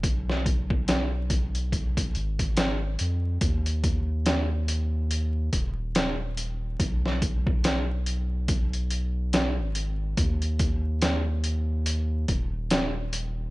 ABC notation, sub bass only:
X:1
M:4/4
L:1/16
Q:"Swing 16ths" 1/4=71
K:Abdor
V:1 name="Sub bass" clef=bass
C,,8- C,,2 A,,,4 F,,2 | E,,8- E,,2 E,,,6 | C,,12- C,, A,,,3 | E,,8- E,,2 E,,,6 |]